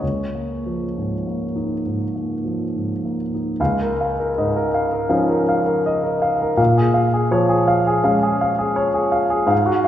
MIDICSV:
0, 0, Header, 1, 2, 480
1, 0, Start_track
1, 0, Key_signature, -5, "major"
1, 0, Tempo, 916031
1, 8, Time_signature, 4, 2, 24, 8
1, 968, Tempo, 874636
1, 1928, Tempo, 759494
1, 3368, Tempo, 728155
1, 6006, End_track
2, 0, Start_track
2, 0, Title_t, "Grand piano"
2, 0, Program_c, 0, 0
2, 0, Control_c, 0, 64, 127
2, 0, Note_on_c, 0, 73, 37
2, 9, Note_on_c, 0, 37, 29
2, 19, Control_c, 0, 64, 0
2, 114, Control_c, 0, 64, 127
2, 183, Note_on_c, 0, 58, 24
2, 346, Note_on_c, 0, 53, 24
2, 436, Note_off_c, 0, 58, 0
2, 511, Note_on_c, 0, 44, 24
2, 596, Note_off_c, 0, 53, 0
2, 666, Note_on_c, 0, 58, 26
2, 756, Note_off_c, 0, 44, 0
2, 816, Note_on_c, 0, 63, 25
2, 911, Note_off_c, 0, 58, 0
2, 947, Note_off_c, 0, 37, 0
2, 973, Note_on_c, 0, 44, 24
2, 1067, Note_off_c, 0, 63, 0
2, 1136, Note_on_c, 0, 58, 23
2, 1230, Note_off_c, 0, 44, 0
2, 1297, Note_on_c, 0, 53, 25
2, 1393, Note_off_c, 0, 58, 0
2, 1463, Note_on_c, 0, 44, 24
2, 1553, Note_off_c, 0, 53, 0
2, 1628, Note_on_c, 0, 58, 22
2, 1694, Note_off_c, 0, 73, 0
2, 1719, Note_off_c, 0, 44, 0
2, 1788, Note_on_c, 0, 63, 26
2, 1876, Note_off_c, 0, 58, 0
2, 1931, Note_on_c, 0, 37, 41
2, 1934, Note_off_c, 0, 63, 0
2, 1936, Note_on_c, 0, 77, 37
2, 1938, Control_c, 0, 64, 0
2, 2034, Control_c, 0, 64, 127
2, 2068, Note_on_c, 0, 70, 31
2, 2129, Note_off_c, 0, 77, 0
2, 2187, Note_on_c, 0, 77, 34
2, 2255, Note_off_c, 0, 70, 0
2, 2306, Note_on_c, 0, 70, 32
2, 2374, Note_off_c, 0, 77, 0
2, 2423, Note_on_c, 0, 44, 34
2, 2424, Note_on_c, 0, 75, 35
2, 2493, Note_off_c, 0, 70, 0
2, 2539, Note_on_c, 0, 70, 37
2, 2612, Note_off_c, 0, 75, 0
2, 2653, Note_on_c, 0, 77, 37
2, 2728, Note_off_c, 0, 70, 0
2, 2770, Note_on_c, 0, 70, 35
2, 2844, Note_off_c, 0, 77, 0
2, 2872, Note_on_c, 0, 53, 32
2, 2874, Note_on_c, 0, 77, 35
2, 2877, Note_on_c, 0, 61, 35
2, 2882, Note_on_c, 0, 63, 30
2, 2962, Note_off_c, 0, 70, 0
2, 3004, Note_on_c, 0, 70, 32
2, 3075, Note_off_c, 0, 77, 0
2, 3122, Note_on_c, 0, 77, 39
2, 3183, Note_off_c, 0, 44, 0
2, 3199, Note_off_c, 0, 70, 0
2, 3234, Note_on_c, 0, 70, 33
2, 3316, Note_off_c, 0, 77, 0
2, 3359, Note_on_c, 0, 75, 37
2, 3432, Note_off_c, 0, 70, 0
2, 3474, Note_on_c, 0, 70, 35
2, 3555, Note_off_c, 0, 75, 0
2, 3594, Note_on_c, 0, 77, 41
2, 3670, Note_off_c, 0, 70, 0
2, 3726, Note_on_c, 0, 70, 37
2, 3789, Note_off_c, 0, 77, 0
2, 3804, Note_off_c, 0, 53, 0
2, 3807, Note_off_c, 0, 61, 0
2, 3809, Note_off_c, 0, 63, 0
2, 3817, Note_off_c, 0, 37, 0
2, 3827, Note_on_c, 0, 46, 46
2, 3828, Note_on_c, 0, 77, 40
2, 3842, Note_off_c, 0, 70, 0
2, 3851, Control_c, 0, 64, 0
2, 3954, Control_c, 0, 64, 127
2, 3961, Note_on_c, 0, 68, 36
2, 4022, Note_off_c, 0, 77, 0
2, 4070, Note_on_c, 0, 77, 39
2, 4148, Note_off_c, 0, 68, 0
2, 4199, Note_on_c, 0, 68, 38
2, 4263, Note_off_c, 0, 77, 0
2, 4314, Note_on_c, 0, 53, 41
2, 4318, Note_on_c, 0, 73, 45
2, 4389, Note_off_c, 0, 68, 0
2, 4434, Note_on_c, 0, 68, 42
2, 4512, Note_off_c, 0, 73, 0
2, 4555, Note_on_c, 0, 77, 45
2, 4634, Note_off_c, 0, 68, 0
2, 4684, Note_on_c, 0, 68, 44
2, 4756, Note_off_c, 0, 77, 0
2, 4794, Note_on_c, 0, 56, 38
2, 4795, Note_on_c, 0, 77, 45
2, 4797, Note_on_c, 0, 61, 39
2, 4881, Note_off_c, 0, 68, 0
2, 4920, Note_on_c, 0, 68, 43
2, 4995, Note_off_c, 0, 77, 0
2, 5040, Note_on_c, 0, 77, 46
2, 5097, Note_off_c, 0, 53, 0
2, 5115, Note_off_c, 0, 68, 0
2, 5156, Note_on_c, 0, 68, 41
2, 5235, Note_off_c, 0, 77, 0
2, 5270, Note_on_c, 0, 73, 47
2, 5352, Note_off_c, 0, 68, 0
2, 5388, Note_on_c, 0, 68, 41
2, 5470, Note_off_c, 0, 73, 0
2, 5506, Note_on_c, 0, 77, 46
2, 5590, Note_off_c, 0, 68, 0
2, 5627, Note_on_c, 0, 68, 44
2, 5709, Note_off_c, 0, 77, 0
2, 5734, Note_off_c, 0, 46, 0
2, 5734, Note_on_c, 0, 44, 50
2, 5735, Note_off_c, 0, 56, 0
2, 5736, Note_off_c, 0, 61, 0
2, 5739, Note_on_c, 0, 77, 47
2, 5758, Note_off_c, 0, 68, 0
2, 5779, Control_c, 0, 64, 0
2, 5862, Note_on_c, 0, 66, 39
2, 5888, Control_c, 0, 64, 127
2, 5945, Note_off_c, 0, 77, 0
2, 5983, Note_on_c, 0, 77, 46
2, 6006, Note_off_c, 0, 44, 0
2, 6006, Note_off_c, 0, 66, 0
2, 6006, Note_off_c, 0, 77, 0
2, 6006, End_track
0, 0, End_of_file